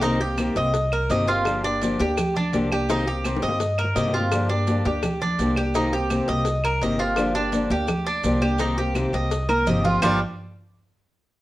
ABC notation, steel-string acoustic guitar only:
X:1
M:4/4
L:1/8
Q:1/4=168
K:Gm
V:1 name="Steel-string acoustic guitar"
[C,E,B,CG] [B,CG] [C,E,B,CG] [B,CG] z2 [C,E,B,CG] [B,CG] | [D,F,B,DG] [B,DG] [D,F,B,DG] [B,DG] z2 [D,F,B,DG] [B,DG] | [C,E,B,CG] [B,CG] [C,E,B,CG] [B,CG] z2 [C,E,B,CG] [B,CG] | [D,F,B,DG] [B,DG] [D,F,B,DG] [B,DG] z2 [D,F,B,DG] [B,DG] |
[C,E,B,CG] [B,CG] [C,E,B,CG] [B,CG] z2 [C,E,B,CG] [B,CG] | [D,F,B,DG] [B,DG] [D,F,B,DG] [B,DG] z2 [D,F,B,DG] [B,DG] | [C,E,B,CG] [B,CG] [C,E,B,CG] [B,CG] z2 [C,E,B,CG] [B,CG] | [G,,D,F,B,DG] z6 z |]